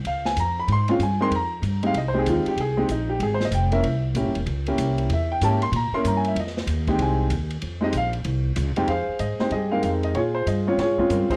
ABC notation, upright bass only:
X:1
M:4/4
L:1/8
Q:"Swing" 1/4=190
K:Fm
V:1 name="Upright bass" clef=bass
D,,2 F,,2 A,,2 G,,2 | F,,2 G,,2 C,,2 E,, z | C,,2 B,,,2 A,,,2 F,,,2 | C,,2 (3B,,, G,,, =E,,, D,,2 C,,2 |
=E,,2 A,,2 B,, z G,,2 | F,,2 E,,2 C,,2 E,,2 | F,,2 B,,,2 C,,2 D,, z | F,, z A,, z G,,2 F,,2 |
B,,2 G,,2 A,,2 G,, z |]